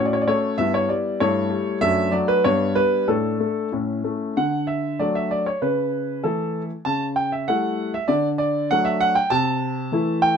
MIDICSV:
0, 0, Header, 1, 2, 480
1, 0, Start_track
1, 0, Key_signature, 2, "major"
1, 0, Tempo, 616650
1, 453, Time_signature, 2, 2, 24, 8
1, 1894, Tempo, 639659
1, 3814, Tempo, 622407
1, 5254, Tempo, 611621
1, 8009, End_track
2, 0, Start_track
2, 0, Title_t, "Grand piano"
2, 0, Program_c, 0, 0
2, 0, Note_on_c, 0, 45, 46
2, 0, Note_on_c, 0, 61, 34
2, 0, Note_on_c, 0, 66, 30
2, 42, Note_on_c, 0, 74, 53
2, 101, Note_off_c, 0, 74, 0
2, 102, Note_on_c, 0, 73, 57
2, 162, Note_off_c, 0, 73, 0
2, 167, Note_on_c, 0, 74, 60
2, 206, Note_off_c, 0, 45, 0
2, 215, Note_on_c, 0, 73, 70
2, 218, Note_on_c, 0, 57, 45
2, 225, Note_off_c, 0, 74, 0
2, 420, Note_off_c, 0, 61, 0
2, 423, Note_off_c, 0, 66, 0
2, 426, Note_off_c, 0, 73, 0
2, 448, Note_off_c, 0, 57, 0
2, 449, Note_on_c, 0, 76, 80
2, 453, Note_on_c, 0, 59, 33
2, 454, Note_on_c, 0, 43, 50
2, 459, Note_on_c, 0, 64, 35
2, 571, Note_off_c, 0, 76, 0
2, 577, Note_on_c, 0, 73, 69
2, 686, Note_off_c, 0, 43, 0
2, 691, Note_on_c, 0, 74, 59
2, 693, Note_on_c, 0, 55, 39
2, 694, Note_off_c, 0, 73, 0
2, 900, Note_off_c, 0, 59, 0
2, 903, Note_off_c, 0, 64, 0
2, 924, Note_off_c, 0, 55, 0
2, 930, Note_off_c, 0, 74, 0
2, 937, Note_on_c, 0, 57, 36
2, 937, Note_on_c, 0, 73, 77
2, 941, Note_on_c, 0, 64, 38
2, 942, Note_on_c, 0, 43, 56
2, 1164, Note_on_c, 0, 55, 51
2, 1169, Note_off_c, 0, 43, 0
2, 1382, Note_off_c, 0, 57, 0
2, 1382, Note_off_c, 0, 73, 0
2, 1384, Note_off_c, 0, 64, 0
2, 1400, Note_off_c, 0, 55, 0
2, 1408, Note_on_c, 0, 62, 40
2, 1409, Note_on_c, 0, 57, 41
2, 1410, Note_on_c, 0, 76, 93
2, 1411, Note_on_c, 0, 42, 55
2, 1644, Note_off_c, 0, 42, 0
2, 1646, Note_on_c, 0, 74, 70
2, 1651, Note_off_c, 0, 76, 0
2, 1654, Note_on_c, 0, 54, 46
2, 1770, Note_off_c, 0, 74, 0
2, 1775, Note_on_c, 0, 71, 78
2, 1862, Note_off_c, 0, 57, 0
2, 1862, Note_off_c, 0, 62, 0
2, 1888, Note_off_c, 0, 54, 0
2, 1896, Note_off_c, 0, 71, 0
2, 1902, Note_on_c, 0, 73, 83
2, 1905, Note_on_c, 0, 62, 38
2, 1906, Note_on_c, 0, 59, 40
2, 1907, Note_on_c, 0, 43, 58
2, 2131, Note_off_c, 0, 43, 0
2, 2135, Note_on_c, 0, 71, 83
2, 2136, Note_off_c, 0, 73, 0
2, 2139, Note_on_c, 0, 55, 52
2, 2348, Note_off_c, 0, 59, 0
2, 2348, Note_off_c, 0, 62, 0
2, 2369, Note_off_c, 0, 55, 0
2, 2374, Note_off_c, 0, 71, 0
2, 2378, Note_on_c, 0, 69, 59
2, 2379, Note_on_c, 0, 45, 50
2, 2379, Note_on_c, 0, 62, 36
2, 2610, Note_off_c, 0, 45, 0
2, 2619, Note_on_c, 0, 57, 37
2, 2827, Note_off_c, 0, 69, 0
2, 2830, Note_off_c, 0, 62, 0
2, 2850, Note_off_c, 0, 57, 0
2, 2860, Note_on_c, 0, 61, 33
2, 2861, Note_on_c, 0, 64, 31
2, 2865, Note_on_c, 0, 45, 44
2, 3095, Note_off_c, 0, 45, 0
2, 3100, Note_on_c, 0, 57, 36
2, 3312, Note_off_c, 0, 61, 0
2, 3312, Note_off_c, 0, 64, 0
2, 3333, Note_off_c, 0, 57, 0
2, 3348, Note_on_c, 0, 78, 64
2, 3349, Note_on_c, 0, 50, 42
2, 3558, Note_off_c, 0, 78, 0
2, 3573, Note_on_c, 0, 76, 56
2, 3805, Note_off_c, 0, 50, 0
2, 3812, Note_off_c, 0, 76, 0
2, 3816, Note_on_c, 0, 74, 62
2, 3817, Note_on_c, 0, 54, 31
2, 3825, Note_on_c, 0, 57, 32
2, 3829, Note_on_c, 0, 62, 33
2, 3936, Note_off_c, 0, 74, 0
2, 3938, Note_on_c, 0, 76, 57
2, 4056, Note_off_c, 0, 76, 0
2, 4058, Note_on_c, 0, 74, 64
2, 4161, Note_off_c, 0, 54, 0
2, 4166, Note_off_c, 0, 57, 0
2, 4168, Note_off_c, 0, 62, 0
2, 4176, Note_off_c, 0, 74, 0
2, 4178, Note_on_c, 0, 73, 54
2, 4295, Note_off_c, 0, 73, 0
2, 4298, Note_on_c, 0, 49, 42
2, 4298, Note_on_c, 0, 71, 59
2, 4760, Note_off_c, 0, 49, 0
2, 4773, Note_on_c, 0, 69, 62
2, 4774, Note_off_c, 0, 71, 0
2, 4779, Note_on_c, 0, 52, 32
2, 4784, Note_on_c, 0, 64, 37
2, 4785, Note_on_c, 0, 57, 30
2, 5062, Note_off_c, 0, 69, 0
2, 5123, Note_off_c, 0, 52, 0
2, 5127, Note_off_c, 0, 57, 0
2, 5127, Note_off_c, 0, 64, 0
2, 5247, Note_on_c, 0, 81, 73
2, 5252, Note_on_c, 0, 49, 46
2, 5395, Note_off_c, 0, 81, 0
2, 5489, Note_on_c, 0, 79, 64
2, 5615, Note_off_c, 0, 79, 0
2, 5617, Note_on_c, 0, 76, 56
2, 5725, Note_off_c, 0, 49, 0
2, 5739, Note_off_c, 0, 76, 0
2, 5740, Note_on_c, 0, 78, 73
2, 5746, Note_on_c, 0, 57, 37
2, 5747, Note_on_c, 0, 55, 37
2, 5752, Note_on_c, 0, 64, 41
2, 6072, Note_off_c, 0, 78, 0
2, 6091, Note_off_c, 0, 57, 0
2, 6092, Note_off_c, 0, 55, 0
2, 6095, Note_off_c, 0, 64, 0
2, 6103, Note_on_c, 0, 76, 65
2, 6210, Note_on_c, 0, 74, 77
2, 6216, Note_on_c, 0, 50, 46
2, 6223, Note_off_c, 0, 76, 0
2, 6358, Note_off_c, 0, 74, 0
2, 6450, Note_on_c, 0, 74, 74
2, 6685, Note_off_c, 0, 50, 0
2, 6697, Note_off_c, 0, 74, 0
2, 6704, Note_on_c, 0, 78, 86
2, 6709, Note_on_c, 0, 54, 38
2, 6711, Note_on_c, 0, 57, 40
2, 6715, Note_on_c, 0, 62, 40
2, 6814, Note_on_c, 0, 76, 75
2, 6824, Note_off_c, 0, 78, 0
2, 6938, Note_on_c, 0, 78, 88
2, 6939, Note_off_c, 0, 76, 0
2, 7053, Note_off_c, 0, 54, 0
2, 7054, Note_off_c, 0, 57, 0
2, 7055, Note_on_c, 0, 79, 75
2, 7056, Note_off_c, 0, 62, 0
2, 7061, Note_off_c, 0, 78, 0
2, 7172, Note_on_c, 0, 81, 88
2, 7178, Note_on_c, 0, 48, 58
2, 7179, Note_off_c, 0, 79, 0
2, 7641, Note_off_c, 0, 48, 0
2, 7657, Note_on_c, 0, 52, 42
2, 7661, Note_on_c, 0, 57, 41
2, 7670, Note_on_c, 0, 64, 45
2, 7890, Note_off_c, 0, 81, 0
2, 7892, Note_on_c, 0, 79, 86
2, 8001, Note_off_c, 0, 52, 0
2, 8003, Note_off_c, 0, 57, 0
2, 8009, Note_off_c, 0, 64, 0
2, 8009, Note_off_c, 0, 79, 0
2, 8009, End_track
0, 0, End_of_file